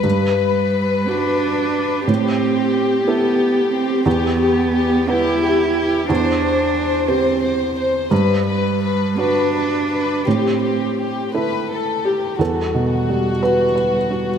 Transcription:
<<
  \new Staff \with { instrumentName = "Violin section" } { \time 6/8 \key e \minor \tempo 4. = 59 b'2. | g'2. | g'8 g'8 g'8 g'8 g'8 g'8 | c''8 c''8 c''8 c''8 c''8 c''8 |
b'8 b'8 b'8 b'8 b'8 b'8 | g'8 g'8 g'8 b'8 a'8 g'8 | fis'2. | }
  \new Staff \with { instrumentName = "Felt piano" } { \time 6/8 \key e \minor << { r2. | r2. | r2. | r2. |
r2. | r2 r8 g'8 | a'4. b'4. | } \\ { g,4. <fis' b'>4. | a,4. <e' a'>4. | e,4. <b' fis''>4. | e,4. <g' c''>4. |
g,4. <fis' b'>4. | a,4. <e' a'>4. | e,8 b,8 g8 fis'8 b'8 fis'8 | } >> }
  \new Staff \with { instrumentName = "Cello" } { \time 6/8 \key e \minor r8 g4 d'4. | c'4. b4 c'8 | b4. e'4. | d'4. c'4 r8 |
r8 g4 d'4. | c'4. r4. | g2. | }
>>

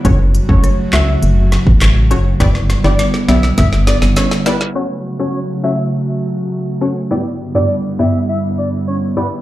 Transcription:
<<
  \new Staff \with { instrumentName = "Soft synth lead" } { \time 4/4 \key fis \phrygian \tempo 4 = 102 r8. cis''8 r16 e''8 r2 | r8. d''8 r16 e''8 e''16 r16 d''16 r16 cis''16 r16 b'16 r16 | r8. cis''8 r16 e''8 r2 | r8. d''8 r16 e''8 e''16 r16 d''16 r16 cis''16 r16 b'16 r16 | }
  \new Staff \with { instrumentName = "Synth stab" } { \time 4/4 \key fis \phrygian <a cis' fis' cis''>8. <a cis' fis' cis''>8. <a cis' fis' cis''>8 r4. <a cis' fis' cis''>8 | <b e' g' d''>8. <b e' g' d''>8. <b e' g' d''>8 r4. <b e' g' d''>8 | <a cis' fis' cis''>8. <a cis' fis' cis''>8. <a cis' fis' cis''>8 r4. <a cis' fis' cis''>8 | <g, b e' g' d''>8. <g, b e' g' d''>8. <g, b e' g' d''>8 r4. <g, b e' g' d''>8 | }
  \new Staff \with { instrumentName = "Analog synth pad" } { \clef bass \time 4/4 \key fis \phrygian <cis fis a fis'>1 | <d g b e'>1 | <cis fis a fis'>1 | <g, d g b e'>1 | }
  \new Staff \with { instrumentName = "FM bass" } { \clef bass \time 4/4 \key fis \phrygian fis,,8. fis,,16 r8 cis,8 fis,,8. a,,8. fis,,8 | g,,8. g,,16 r8 b,,8 g,,8. g,,16 r4 | r1 | r1 | }
  \new DrumStaff \with { instrumentName = "Drums" } \drummode { \time 4/4 <hh bd>8 hh16 bd16 <hh ss>8 <hc hh sn>8 hh8 <hh sn>16 bd16 <hc hh sn>8 hh8 | <hh bd sn>16 sn16 <hh sn>16 sn16 <hh sn>16 sn16 <hh sn>16 sn16 <hh bd sn>16 sn16 <hh sn>16 sn16 <hh sn>16 sn16 <hh sn>16 sn16 | r4 r4 r4 r4 | r4 r4 r4 r4 | }
>>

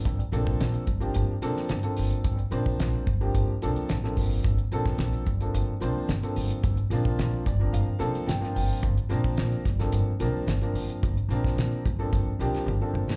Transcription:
<<
  \new Staff \with { instrumentName = "Grand piano" } { \time 4/4 \key g \minor \tempo 4 = 109 << { r1 | r1 | r1 | r4. d''8 f''4 g''8 g''8 |
r1 | r1 | } \\ { <f bes c' d' a'>16 r16 <f bes c' d' a'>4 r16 <f bes c' d' g'>8 r16 <f bes c' d' a'>8 r16 <f bes c' d' a'>8.~ | <f bes c' d' a'>16 r16 <f bes c' d' c''>4 r16 <f bes c' d' g'>8 r16 <f bes c' d' a'>8 r16 <f bes c' d' a'>8.~ | <f bes c' d' a'>16 r16 <f bes c' d' a'>4 r16 <f bes c' d' a'>8 r16 <f bes c' d' c''>8 r16 <f bes c' d' a'>8.~ | <f bes c' d' a'>16 r16 <f bes c' d' f'>4 r16 <f bes c' d' bes'>8 r16 <f bes c' d' a'>8 r16 <f bes c' d' f'>8.~ |
<f bes c' d' f'>16 r16 <f bes c' d' bes'>4 r16 <f bes c' d' a'>8 r16 <f bes c' d' bes'>8 r16 <f bes c' d' bes'>8.~ | <f bes c' d' bes'>16 r16 <f bes c' d' bes'>4 r16 <f bes c' d' a'>8 r16 <f bes c' d' g'>8 r16 <f bes c' d' a'>8. | } >> }
  \new Staff \with { instrumentName = "Upright bass" } { \clef bass \time 4/4 \key g \minor g,,16 r16 bes,,8 bes,,16 r16 g,,8 g,,16 r16 c,16 r16 g,,16 r16 g,,16 r16 | g,,16 r16 bes,,8 bes,,16 r16 g,,8 g,,16 r16 c,16 r16 a,,8 g,,8 | g,,16 r16 bes,,8 bes,,16 r16 g,,8 g,,16 r16 c,16 r16 g,,16 r16 g,,16 r16 | g,,16 r16 bes,,8 bes,,16 r16 g,,8 g,,16 r16 c,16 r16 g,,16 r16 g,,16 r16 |
g,,16 r16 bes,,8 bes,,16 r16 g,,8 g,,16 r16 c,16 r16 g,,16 r16 g,,16 r16 | g,,16 r16 bes,,8 bes,,16 r16 g,,8 g,,16 r16 c,16 r16 g,,16 r16 g,,16 r16 | }
  \new DrumStaff \with { instrumentName = "Drums" } \drummode { \time 4/4 <hh bd>16 hh16 hh16 bd16 <hh sn>16 hh16 <hh bd>16 hh16 hh8 hh16 sn16 <hh sn>16 hh16 hho16 hh16 | <hh bd>16 hh16 hh16 bd16 <hh sn>8 <hh bd>8 <hh bd>8 hh16 hh16 <hh sn>16 sn16 <hho bd>8 | <hh bd>16 hh16 hh16 <bd sn>16 <hh sn>16 hh16 <hh bd>16 hh16 hh8 hh8 <hh sn>16 hh16 hho16 hh16 | <hh bd>16 hh16 hh16 bd16 <hh sn>8 <hh bd>8 hh8 hh16 hh16 <hh sn>16 sn16 hho8 |
<hh bd>16 hh16 hh16 bd16 <hh sn>16 hh16 <hh bd sn>16 <hh sn>16 hh8 hh8 <hh sn>16 hh16 hho16 hh16 | <hh bd>16 hh16 hh16 <bd sn>16 <hh sn>8 <hh bd>8 <hh bd>8 hh16 <hh sn>16 tommh8 toml16 sn16 | }
>>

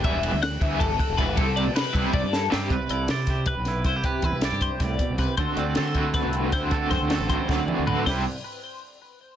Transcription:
<<
  \new Staff \with { instrumentName = "Clean electric guitar" } { \time 7/8 \key c \lydian \tempo 4 = 157 e''4 fis''8 e''8 a'4 b'8 | a'8 d''8 b'4 d''8 a'8 g'8 | b'8 d''8 c''4 b'4 c''8 | g'8 b'8 g'8 c''8 d''4 b'8 |
c''8 d''8 c''4 b'4 c''8 | a'8 c''8 a'8 c''8 d''4 b'8 | c''8 r2. | }
  \new Staff \with { instrumentName = "Clean electric guitar" } { \time 7/8 \key c \lydian << { r2. r8 | r2. r8 | b'8 e'8 d''8 g'8 b'8 e'8 e'16 g'16 | b'8 e'8 d''8 g'2 |
a'8 c'8 a'8 e'8 a'8 c'8 e'8 | a'8 c'8 a'8 e'2 | <g e' g' b'>8 r2. | } \\ { r2. r8 | r2. r8 | c2.~ c8 | c2 a,8 b,8 c8 |
d2.~ d8 | d2 fis8 e8 d8 | c8 r2. | } >> }
  \new Staff \with { instrumentName = "Overdriven electric guitar" } { \time 7/8 \key c \lydian <e g b e'>8 r4 <e g b e'>8 r4 <e g b e'>8 | <c g c' e'>8 r4 <c g c' e'>8 r4 <c g c' e'>8 | r2. r8 | r2. r8 |
<d a c' fis'>4. <d a c' fis'>4. <d a c' fis'>8 | <d a c' fis'>4. <d a c' fis'>4. <d a c' fis'>8 | <c g c' e' g'>8 r2. | }
  \new Staff \with { instrumentName = "Fingered electric bass" } { \clef bass \time 7/8 \key c \lydian e,,8. d,8. d,8 g,,8 r16 e,,8 g,,16 | c,8. c8 r16 c,16 r16 c,16 g,8. g,8 | c,16 r16 c,8 c4~ c16 b,,8. c,8 | r8 e,16 c,8 g,8 r16 c,8 r16 c,8 r16 |
d,16 r16 d,8 d4~ d16 c,8. d,8 | r8 fis,16 d,8 a,,8 r16 d,8 r16 d,8 r16 | c,8 r2. | }
  \new DrumStaff \with { instrumentName = "Drums" } \drummode { \time 7/8 <bd cymr>8 cymr8 <cymr sn>8 <bd cymr>8 <bd cymr>8 <bd cymr>8 <bd cymr>8 | <bd cymr>8 cymr8 <cymr sn>8 <bd cymr>8 bd8 sn8 sn8 | <hh bd>8 hh8 <hh sn>8 <hh bd sn>8 <hh bd>8 <hh sn>8 <hh bd sn>8 | <hh bd>8 <hh bd>8 <hh sn>8 <hh bd>8 <hh bd sn>8 <hh bd>8 <hh bd sn>8 |
<hh bd>8 hh8 <hh sn>8 <hh bd>8 <hh bd sn>8 hh8 <hh bd sn>8 | <hh bd>8 <hh bd sn>8 <hh sn>8 <hh bd>8 <bd sn>8 toml8 tomfh8 | <hho bd sn>4 r4 r4. | }
>>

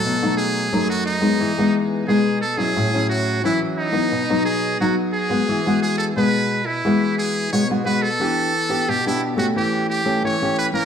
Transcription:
<<
  \new Staff \with { instrumentName = "Muted trumpet" } { \time 4/4 \key e \major \tempo 4 = 88 a'8 gis'8. fis'16 dis'4 r8 gis'8 a'16 gis'16~ | gis'8 fis'8 e'8 dis'4 gis'8 fis'8 gis'8~ | gis'8 gis'16 a'16 b'8. e'8. gis'8 cis''8 b'16 a'16~ | \key e \minor a'4 g'16 e'8 fis'16 g'8 g'8 cis''8 b'16 ais'16 | }
  \new Staff \with { instrumentName = "Nylon-string guitar" } { \time 4/4 \key e \major << { <fis a dis'>16 <fis a dis'>8. <fis a dis'>8. <gis b dis'>8 <gis b dis'>8. <gis b dis'>8 r16 <fis cis' e'>16~ | <fis cis' e'>16 <fis cis' e'>8. <fis cis' e'>8. <fis b dis'>8 <fis b dis'>8. <fis b dis'>8. <gis b fis'>16~ | <gis b fis'>16 <gis b fis'>8. <gis b fis'>8. r16 <gis b fis'>4 <gis b fis'>16 <gis b fis'>16 <gis b fis'>16 r16 | \key e \minor <b d' g'>8 r16 <b d' g'>8 <b d' g'>8 <a cis' g'>4 <a cis' g'>8 <a cis' g'>8 <e ais cis'>16 | } \\ { b,4 fis,4 e4 b,4 | a,4 e4 b,4 fis4 | e4 b,4 e4 b,4 | e4 b,4 e4 e4 | } >> }
>>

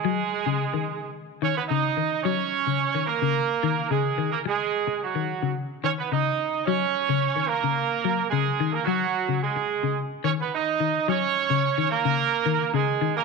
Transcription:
<<
  \new Staff \with { instrumentName = "Horn section" } { \time 4/4 \key des \mixolydian \tempo 4 = 109 <aes aes'>2 r8 <des' des''>16 <ces' ces''>16 <ees' ees''>4 | <des' des''>4. <bes bes'>4. <aes aes'>8. <bes bes'>16 | <aes aes'>4 <ges ges'>4 r8 <des' des''>16 <ces' ces''>16 <ees' ees''>4 | <des' des''>4. <bes bes'>4. <aes aes'>8. <bes bes'>16 |
<ges ges'>4 <aes aes'>4 r8 <des' des''>16 <ces' ces''>16 <ees' ees''>4 | <des' des''>4. <bes bes'>4. <aes aes'>8. <bes bes'>16 | }
  \new Staff \with { instrumentName = "Clean electric guitar" } { \clef bass \time 4/4 \key des \mixolydian ges8 r16 des8 ees8 r8. ees8 des8 ees8 | ges8 r16 des8 ees8 des8 r16 ees8 des8 ees8 | r4 r16 ees8 des8 r16 ees8 des8 r8 | ges8 r16 des8 ees8 des8 r16 ges8 des8 ees8 |
ges8 r16 des8 r8 des8 r16 ees8 r8 ees8 | ges8 r16 des8 ees8 des8 r16 ees8 des8 ees8 | }
>>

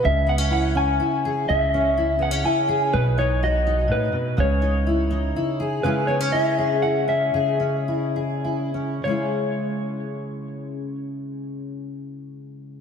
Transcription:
<<
  \new Staff \with { instrumentName = "Clean electric guitar" } { \time 3/4 \key cis \minor \tempo 4 = 124 e''8 fis''8 fis''8 gis''4. | e''4. fis''8 gis''8. r16 | b'8 cis''8 dis''4 b'4 | cis''2 r4 |
b'8 cis''8 e''4 fis''8 e''8~ | e''2~ e''8 r8 | cis''2.~ | cis''2. | }
  \new Staff \with { instrumentName = "Steel-string acoustic guitar" } { \time 3/4 \key cis \minor << { r8 b16 cis'16 e'8 cis'8 e'8 gis'8~ | gis'8 cis'8 e'8 b16 cis'16 e'8 gis'8 | r8 dis'8 fis'8 dis'4. | r8 dis'8 e'8 dis'8 e'8 gis'8 |
<gis cis' e' gis'>8 b16 cis'16 e'8 gis'8 e'8 cis'8 | gis'8 cis'8 e'8 gis'8 e'8 cis'8 | <gis cis' e' gis'>2.~ | <gis cis' e' gis'>2. | } \\ { cis2. | cis2. | b,2 a,8 b,8 | cis2. |
cis2. | cis2. | cis2.~ | cis2. | } >> }
  \new Staff \with { instrumentName = "Upright bass" } { \clef bass \time 3/4 \key cis \minor cis,2 r4 | cis,2 r4 | b,,2 r4 | cis,2 r4 |
r2. | r2. | r2. | r2. | }
>>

